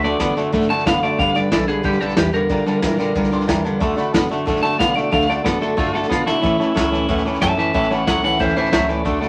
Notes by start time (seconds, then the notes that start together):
Already playing: D2
0.03 D3 A3 F#4 A4 D5 F#5 A5, snare
0.07 D4
0.19 F#2 D3 A3 B3 D4 F#4 A4 D5 A5, kick, snare, hi-hat pedal
0.36 D3 A3 D4 F#4 A4 D5 F#5 A5, snare
0.52 G2 D3 A3 D4 F#4 A4 D5 F#5 A5, kick, snare
0.61 snare
0.68 D3 A3 D4 F#4 A4 D5 F#5 A5, snare
0.79 snare
0.85 F#1 D3 A3 B3 D4 A4 D5 F5 F#5 B5, kick, snare, hi-hat pedal
1.01 D3 A3 F#4 A4 D5 F#5 B5, snare
1.06 D4
1.17 G1 G2 D3 G3 D4 G4 D5 F5 G5 B5, kick, snare
1.22 B4
1.34 G2 D3 G4 B4 D5 G5 D6, snare
1.38 D4
1.51 B1 G2 E3 G3 D4 G4 A4 B4 D5 B5, kick, snare, hi-hat pedal
1.67 G2 D3 D4 G4 G#4 B4 D5 G5 B5, snare
1.83 B1 G2 D3 G3 D4 G4 B4 D5 G5 B5, kick, snare
1.93 snare
2.00 G2 D3 D4 G4 A4 B4 D5 G5 B5, snare
2.09 snare
2.17 E2 G2 E3 G3 D4 G4 B4 D5 G5 B5, kick, snare, hi-hat pedal
2.33 G2 D3 D4 G4 A#4 B4 D5 G5 D6, snare
2.49 G1 G2 D3 G3 D4 F4 A#4 D5 G5 A#5, kick, snare
2.65 G2 D3 D4 F4 A#4 D5 G5 A5, snare
2.81 A#1 G2 E3 G3 D4 F4 D5 G5 A#5, kick, snare, hi-hat pedal
2.85 A#4
2.98 G2 D3 D4 F4 A#4 D5 G5 A5, snare
3.15 C2 G2 D3 G3 D4 F4 A#4 D5 G5 A#5, kick, snare
3.23 snare
3.31 G2 D3 D4 F4 A#4 D5 G5 C6, snare
3.40 snare
3.47 E2 G2 E3 G3 D4 F4 A#4 D5 G5 A#5, kick, snare, hi-hat pedal
3.63 G2 D3 F4 A#4 D5 G5 A5, snare
3.67 D4
3.79 D2 D3 A3 D4 F#4 D5 F#5 A5, kick, snare
3.83 A4
3.96 D3 A3 F#4 A4 D5 F#5 B5, snare
4.01 D4
4.13 F#2 D3 A3 B3 D4 F#4 A4 F#5 B5, kick, snare, hi-hat pedal
4.29 D3 A3 D4 F#4 A4 D5 F#5 A5, snare
4.45 G2 D3 A3 D4 F#4 A4 D5 F#5 A5, kick, snare
4.56 snare
4.62 D3 A3 F#4 A4 D5 F#5 A5, snare
4.67 D4
4.72 snare
4.78 B2 D3 A3 B3 D4 F#4 D5 F5 F#5 A5, kick, snare, hi-hat pedal
4.83 A4
4.95 D3 A3 F#4 A4 D5 F#5 A5, snare
5.00 D4
5.11 D2 D3 A3 D4 F#4 A4 D5 F5 F#5 A5, kick, snare
5.21 snare
5.27 D3 A3 D4 F#4 A4 D5 F#5 A5, snare
5.44 F#2 D3 A3 B3 D4 F#4 A4 D5, kick, snare, hi-hat pedal
5.48 A4
5.60 D3 A3 F#4 A4 D5 F#5 A5, snare
5.64 D4
5.76 G2 D3 A3 D4 F4 F#4 A4 D5 F#5 A5, kick, snare
5.86 snare
5.93 D3 A3 F#4 A4 D5 F#5 A5, snare
5.97 D4
6.03 snare
6.09 B2 D3 A3 B3 D4 F4 F#4 A4 D5 F#5 A5, kick, snare, hi-hat pedal
6.26 D3 A3 E4 F#4 A4 D5 F#5 A5, snare
6.30 D4
6.42 A1 A2 E3 A3 C#4 E4 A4 C#5 E5 A5, kick, snare
6.59 A2 E3 A3 C#4 E4 A4 C#5 E5 A5, snare
6.74 C#2 A2 F#3 A3 C#4 E4 A4 C#5 E5 A5, kick, snare, hi-hat pedal
6.91 A2 E3 C#4 E4 A4 C#5 E5 A5, snare
6.95 A3
7.08 D2 A2 E3 A3 C#4 E4 A4 C#5 E5 F#5, kick, snare
7.18 snare
7.25 A2 E3 A3 C#4 E4 A4 C#5 E5 A5, snare
7.34 snare
7.40 F#2 A2 F#3 A3 C#4 E4 A4 C#5 E5 A5, kick, snare, hi-hat pedal
7.57 A2 E3 A3 C#4 E4 A4 C#5 E5 A5, snare
7.73 A1 A2 E3 A3 C#4 E4 A4 C#5 E5 G5 A5, kick, snare
7.83 snare
7.90 A2 E3 A3 C#4 E4 A4 C#5 E5 F#5 A5, snare
8.07 C#2 A2 F#3 A3 C#4 E4 A4 C#5 E5 F#5 B5, kick, snare, hi-hat pedal
8.23 A2 E3 A3 C#4 E4 A4 C#5 E5 F#5, snare
8.39 D2 A2 E3 A3 C#4 E4 A4 C5 C#5 E5 G5, kick, snare
8.48 snare
8.56 A2 E3 A3 C#4 E4 A4 C5 C#5 E5 A5, snare
8.65 snare
8.72 C#2 A2 F#3 A3 C#4 E4 A4 C5 C#5 E5 A5, kick, snare, hi-hat pedal
8.88 A2 E3 A3 C#4 E4 A4 C#5 D5 E5 B5, snare
9.05 D2 D3 A3 D4 F#4 A4 D5 F#5 A5, kick, snare
9.21 D3 A3 D4 F#4 A4 D5 F#5 A5, snare